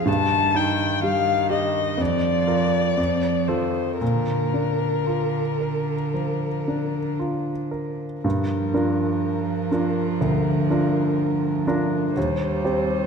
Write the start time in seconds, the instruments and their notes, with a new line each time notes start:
0.06 grand piano G2, cello D#3, violin A5
0.55 grand piano D#4, violin G5
1.03 cello D#3, grand piano G3, violin F5
1.50 grand piano G4, violin D#5
1.98 grand piano F2, cello F3, violin D5
2.47 grand piano F4 A#4
2.97 grand piano F2, cello F3
3.48 cello D#3, grand piano F4 A4, violin C5
3.98 grand piano A#2, cello D3, violin A#4
4.54 grand piano D4
5.07 grand piano F4
5.61 grand piano A#4
6.14 grand piano F3
6.68 grand piano D4
7.19 grand piano F4
7.71 grand piano A#4
8.23 grand piano G2, cello F3, violin A#4
8.74 grand piano D4 F4 A#4
9.71 grand piano D4 F4 A#4
10.21 grand piano D2
10.70 grand piano D4 F4 A#4
11.67 grand piano D4 F4 A#4
12.16 grand piano D#2, cello G3, violin C5
12.65 grand piano C4 G4 C5